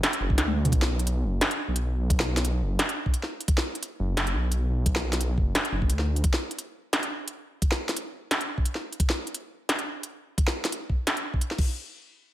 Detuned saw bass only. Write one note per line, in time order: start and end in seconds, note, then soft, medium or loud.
0.21 0.39 F#1 loud
0.38 0.71 D2 medium
0.72 1.26 B1 loud
1.24 1.40 F#1 medium
1.68 2.63 B1 medium
2.62 2.78 F#1 medium
4.00 4.36 F#1 medium
4.34 4.68 B1 medium
4.69 5.39 B1 loud
5.38 5.54 F#1 medium
5.72 5.91 F#1 loud
5.90 6.23 D2 medium